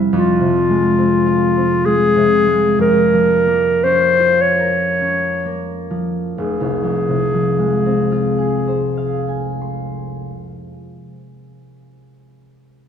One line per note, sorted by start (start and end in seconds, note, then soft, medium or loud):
0.00 0.12 F2 soft
0.00 0.17 C3 soft
0.00 0.17 G3 soft
0.00 0.97 C4 soft
0.00 0.17 E4 soft
0.00 0.17 G4 soft
0.13 2.78 F2 soft
0.13 1.87 F4 soft
0.40 2.15 C3 soft
0.69 1.84 G#3 soft
0.98 1.56 C4 soft
1.26 4.18 F4 soft
1.57 2.85 C4 soft
1.86 2.45 G#3 soft
1.86 2.80 G#4 medium
2.16 2.84 C3 soft
2.47 2.84 G#3 soft
2.79 6.44 F2 soft
2.79 3.85 A#4 medium
3.14 5.89 F3 soft
3.46 5.44 A#3 soft
3.83 5.00 C#4 soft
3.83 4.43 C5 medium
4.20 8.10 F4 soft
4.42 5.70 C#5 soft
4.59 6.44 A#4 soft
5.01 6.44 C#4 soft
5.45 6.44 A#3 soft
5.90 7.33 F3 soft
6.37 10.28 F1 soft
6.37 9.56 G#4 soft
6.60 10.50 C2 soft
6.83 10.73 F2 soft
7.08 10.98 C3 soft
7.34 11.16 F3 soft
7.59 11.03 G#3 soft
7.86 11.05 C4 soft
8.12 11.31 F4 soft
8.38 11.58 G#4 soft
8.68 11.87 C5 soft
8.97 11.87 F5 soft
9.28 11.87 G#5 soft
9.61 11.88 C6 soft